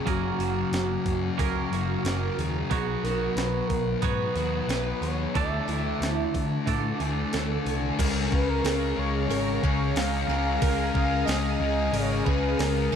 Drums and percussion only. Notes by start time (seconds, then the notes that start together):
0.07 kick, open hi-hat
0.40 open hi-hat
0.73 snare, open hi-hat
1.06 kick, open hi-hat
1.39 kick, open hi-hat
1.73 open hi-hat
2.05 snare, open hi-hat
2.39 open hi-hat
2.71 kick, open hi-hat
3.05 snare, open hi-hat
3.37 snare, open hi-hat
3.70 kick, open hi-hat
4.02 kick, open hi-hat
4.36 open hi-hat
4.69 snare, open hi-hat
5.03 open hi-hat
5.35 kick, open hi-hat
5.69 open hi-hat
6.02 snare, open hi-hat
6.34 kick, open hi-hat
6.67 kick, open hi-hat
7.00 open hi-hat
7.33 snare, open hi-hat
7.67 open hi-hat
7.99 kick, open hi-hat, crash
8.32 kick
8.65 snare, open hi-hat
9.31 open hi-hat
9.64 kick
9.96 snare, open hi-hat
10.31 snare
10.62 kick, open hi-hat
10.95 kick
11.28 snare, open hi-hat
11.94 open hi-hat
12.26 kick
12.59 snare, open hi-hat